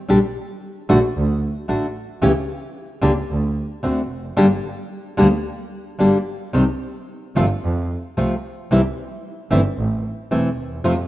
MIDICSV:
0, 0, Header, 1, 3, 480
1, 0, Start_track
1, 0, Key_signature, -2, "minor"
1, 0, Tempo, 532387
1, 83, Time_signature, 4, 2, 24, 8
1, 2482, Tempo, 539084
1, 9893, End_track
2, 0, Start_track
2, 0, Title_t, "Nylon-string guitar"
2, 0, Program_c, 0, 24
2, 77, Note_on_c, 0, 50, 72
2, 80, Note_on_c, 0, 55, 72
2, 85, Note_on_c, 0, 62, 76
2, 89, Note_on_c, 0, 67, 78
2, 160, Note_off_c, 0, 50, 0
2, 162, Note_off_c, 0, 55, 0
2, 164, Note_off_c, 0, 62, 0
2, 166, Note_off_c, 0, 67, 0
2, 802, Note_on_c, 0, 50, 74
2, 804, Note_on_c, 0, 57, 79
2, 808, Note_on_c, 0, 62, 73
2, 810, Note_on_c, 0, 66, 75
2, 882, Note_off_c, 0, 50, 0
2, 883, Note_off_c, 0, 57, 0
2, 886, Note_off_c, 0, 62, 0
2, 886, Note_off_c, 0, 66, 0
2, 1516, Note_on_c, 0, 50, 52
2, 1521, Note_on_c, 0, 57, 57
2, 1522, Note_on_c, 0, 62, 60
2, 1527, Note_on_c, 0, 66, 67
2, 1669, Note_off_c, 0, 50, 0
2, 1671, Note_off_c, 0, 57, 0
2, 1672, Note_off_c, 0, 62, 0
2, 1675, Note_off_c, 0, 66, 0
2, 1999, Note_on_c, 0, 49, 69
2, 2002, Note_on_c, 0, 52, 83
2, 2003, Note_on_c, 0, 57, 80
2, 2008, Note_on_c, 0, 61, 75
2, 2010, Note_on_c, 0, 67, 73
2, 2079, Note_off_c, 0, 49, 0
2, 2081, Note_off_c, 0, 52, 0
2, 2082, Note_off_c, 0, 57, 0
2, 2084, Note_off_c, 0, 61, 0
2, 2085, Note_off_c, 0, 67, 0
2, 2715, Note_on_c, 0, 50, 76
2, 2720, Note_on_c, 0, 58, 79
2, 2726, Note_on_c, 0, 62, 80
2, 2726, Note_on_c, 0, 67, 73
2, 2797, Note_off_c, 0, 50, 0
2, 2800, Note_off_c, 0, 58, 0
2, 2803, Note_off_c, 0, 62, 0
2, 2803, Note_off_c, 0, 67, 0
2, 3440, Note_on_c, 0, 50, 53
2, 3445, Note_on_c, 0, 57, 53
2, 3447, Note_on_c, 0, 60, 62
2, 3449, Note_on_c, 0, 66, 57
2, 3591, Note_off_c, 0, 50, 0
2, 3594, Note_off_c, 0, 57, 0
2, 3595, Note_off_c, 0, 60, 0
2, 3596, Note_off_c, 0, 66, 0
2, 3918, Note_on_c, 0, 50, 72
2, 3919, Note_on_c, 0, 55, 77
2, 3923, Note_on_c, 0, 58, 84
2, 3923, Note_on_c, 0, 62, 80
2, 3928, Note_on_c, 0, 67, 87
2, 3999, Note_off_c, 0, 50, 0
2, 4000, Note_off_c, 0, 55, 0
2, 4001, Note_off_c, 0, 58, 0
2, 4001, Note_off_c, 0, 62, 0
2, 4004, Note_off_c, 0, 67, 0
2, 4636, Note_on_c, 0, 50, 71
2, 4641, Note_on_c, 0, 55, 72
2, 4644, Note_on_c, 0, 58, 77
2, 4647, Note_on_c, 0, 62, 73
2, 4647, Note_on_c, 0, 67, 73
2, 4718, Note_off_c, 0, 50, 0
2, 4720, Note_off_c, 0, 55, 0
2, 4722, Note_off_c, 0, 58, 0
2, 4723, Note_off_c, 0, 62, 0
2, 4724, Note_off_c, 0, 67, 0
2, 5361, Note_on_c, 0, 50, 46
2, 5366, Note_on_c, 0, 55, 62
2, 5370, Note_on_c, 0, 58, 56
2, 5373, Note_on_c, 0, 62, 59
2, 5376, Note_on_c, 0, 67, 64
2, 5517, Note_off_c, 0, 50, 0
2, 5520, Note_off_c, 0, 55, 0
2, 5521, Note_off_c, 0, 58, 0
2, 5523, Note_off_c, 0, 62, 0
2, 5524, Note_off_c, 0, 67, 0
2, 5847, Note_on_c, 0, 48, 73
2, 5852, Note_on_c, 0, 51, 68
2, 5854, Note_on_c, 0, 55, 74
2, 5858, Note_on_c, 0, 60, 66
2, 5858, Note_on_c, 0, 67, 81
2, 5932, Note_off_c, 0, 48, 0
2, 5934, Note_off_c, 0, 51, 0
2, 5935, Note_off_c, 0, 55, 0
2, 5937, Note_off_c, 0, 60, 0
2, 5937, Note_off_c, 0, 67, 0
2, 6581, Note_on_c, 0, 48, 65
2, 6586, Note_on_c, 0, 53, 68
2, 6586, Note_on_c, 0, 57, 73
2, 6587, Note_on_c, 0, 60, 78
2, 6592, Note_on_c, 0, 65, 85
2, 6662, Note_off_c, 0, 48, 0
2, 6664, Note_off_c, 0, 53, 0
2, 6664, Note_off_c, 0, 57, 0
2, 6665, Note_off_c, 0, 60, 0
2, 6667, Note_off_c, 0, 65, 0
2, 7306, Note_on_c, 0, 48, 54
2, 7307, Note_on_c, 0, 53, 58
2, 7308, Note_on_c, 0, 57, 63
2, 7314, Note_on_c, 0, 60, 61
2, 7316, Note_on_c, 0, 65, 58
2, 7455, Note_off_c, 0, 48, 0
2, 7456, Note_off_c, 0, 53, 0
2, 7456, Note_off_c, 0, 57, 0
2, 7459, Note_off_c, 0, 60, 0
2, 7460, Note_off_c, 0, 65, 0
2, 7785, Note_on_c, 0, 48, 72
2, 7789, Note_on_c, 0, 52, 81
2, 7792, Note_on_c, 0, 55, 74
2, 7794, Note_on_c, 0, 60, 73
2, 7797, Note_on_c, 0, 64, 71
2, 7864, Note_off_c, 0, 48, 0
2, 7866, Note_off_c, 0, 52, 0
2, 7868, Note_off_c, 0, 55, 0
2, 7868, Note_off_c, 0, 60, 0
2, 7870, Note_off_c, 0, 64, 0
2, 8495, Note_on_c, 0, 52, 72
2, 8498, Note_on_c, 0, 57, 76
2, 8501, Note_on_c, 0, 60, 76
2, 8504, Note_on_c, 0, 64, 86
2, 8576, Note_off_c, 0, 52, 0
2, 8578, Note_off_c, 0, 57, 0
2, 8579, Note_off_c, 0, 60, 0
2, 8580, Note_off_c, 0, 64, 0
2, 9211, Note_on_c, 0, 52, 64
2, 9214, Note_on_c, 0, 57, 64
2, 9217, Note_on_c, 0, 60, 59
2, 9220, Note_on_c, 0, 64, 61
2, 9360, Note_off_c, 0, 52, 0
2, 9362, Note_off_c, 0, 57, 0
2, 9363, Note_off_c, 0, 60, 0
2, 9365, Note_off_c, 0, 64, 0
2, 9684, Note_on_c, 0, 53, 80
2, 9685, Note_on_c, 0, 48, 77
2, 9687, Note_on_c, 0, 57, 74
2, 9691, Note_on_c, 0, 60, 72
2, 9694, Note_on_c, 0, 65, 94
2, 9764, Note_off_c, 0, 48, 0
2, 9764, Note_off_c, 0, 53, 0
2, 9765, Note_off_c, 0, 57, 0
2, 9767, Note_off_c, 0, 60, 0
2, 9769, Note_off_c, 0, 65, 0
2, 9893, End_track
3, 0, Start_track
3, 0, Title_t, "Double bass"
3, 0, Program_c, 1, 43
3, 83, Note_on_c, 1, 34, 71
3, 285, Note_off_c, 1, 34, 0
3, 804, Note_on_c, 1, 34, 93
3, 1004, Note_off_c, 1, 34, 0
3, 1042, Note_on_c, 1, 38, 94
3, 1242, Note_off_c, 1, 38, 0
3, 1520, Note_on_c, 1, 33, 52
3, 1721, Note_off_c, 1, 33, 0
3, 1997, Note_on_c, 1, 37, 76
3, 2200, Note_off_c, 1, 37, 0
3, 2720, Note_on_c, 1, 37, 87
3, 2922, Note_off_c, 1, 37, 0
3, 2964, Note_on_c, 1, 38, 88
3, 3165, Note_off_c, 1, 38, 0
3, 3444, Note_on_c, 1, 38, 46
3, 3644, Note_off_c, 1, 38, 0
3, 3685, Note_on_c, 1, 29, 54
3, 3913, Note_off_c, 1, 29, 0
3, 3918, Note_on_c, 1, 31, 77
3, 4120, Note_off_c, 1, 31, 0
3, 4645, Note_on_c, 1, 38, 87
3, 4844, Note_off_c, 1, 38, 0
3, 5368, Note_on_c, 1, 31, 49
3, 5572, Note_off_c, 1, 31, 0
3, 5851, Note_on_c, 1, 36, 63
3, 6056, Note_off_c, 1, 36, 0
3, 6585, Note_on_c, 1, 31, 78
3, 6787, Note_off_c, 1, 31, 0
3, 6823, Note_on_c, 1, 41, 90
3, 7026, Note_off_c, 1, 41, 0
3, 7305, Note_on_c, 1, 36, 55
3, 7505, Note_off_c, 1, 36, 0
3, 7786, Note_on_c, 1, 36, 69
3, 7986, Note_off_c, 1, 36, 0
3, 8500, Note_on_c, 1, 31, 93
3, 8699, Note_off_c, 1, 31, 0
3, 8738, Note_on_c, 1, 33, 84
3, 8937, Note_off_c, 1, 33, 0
3, 9214, Note_on_c, 1, 28, 58
3, 9412, Note_off_c, 1, 28, 0
3, 9451, Note_on_c, 1, 39, 59
3, 9681, Note_off_c, 1, 39, 0
3, 9686, Note_on_c, 1, 41, 71
3, 9885, Note_off_c, 1, 41, 0
3, 9893, End_track
0, 0, End_of_file